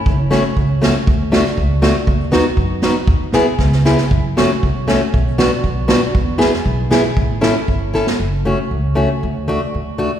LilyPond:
<<
  \new Staff \with { instrumentName = "Steel-string acoustic guitar" } { \time 2/4 \key fis \minor \tempo 4 = 118 r8 <a cis' fis'>8 r8 <a cis' fis'>8 | r8 <a d' fis'>8 r8 <a d' fis'>8 | r8 <b dis' fis'>8 r8 <b dis' fis'>8 | r8 <b e' gis'>8 r8 <b e' gis'>8 |
r8 <a cis' fis'>8 r8 <a cis' fis'>8 | r8 <b d' fis'>8 r8 <b d' fis'>8 | r8 <b e' gis'>8 r8 <b e' gis'>8 | r8 <cis' e' a'>8 r8 <cis' e' a'>8 |
r8 <a cis' fis'>8 r8 <a cis' fis'>8 | r8 <a d' fis'>8 r8 <a d' fis'>8 | }
  \new Staff \with { instrumentName = "Upright bass" } { \clef bass \time 2/4 \key fis \minor fis,,4 cis,4 | d,4 cis,4 | dis,4 fis,4 | e,4 cis,4 |
fis,4 c,4 | b,,4 b,,4 | e,4 b,,4 | a,,4 g,,4 |
fis,,4 cis,4 | d,4 d,4 | }
  \new DrumStaff \with { instrumentName = "Drums" } \drummode { \time 2/4 bd8 sn8 bd8 sn8 | bd8 sn16 sn16 bd8 sn8 | bd8 sn8 bd8 sn8 | bd8 sn8 <bd sn>16 sn16 sn16 sn16 |
bd8 sn8 bd8 sn8 | bd8 sn8 bd8 sn8 | bd8 sn16 sn16 bd8 sn8 | bd8 sn8 bd8 sn16 sn16 |
r4 r4 | r4 r4 | }
>>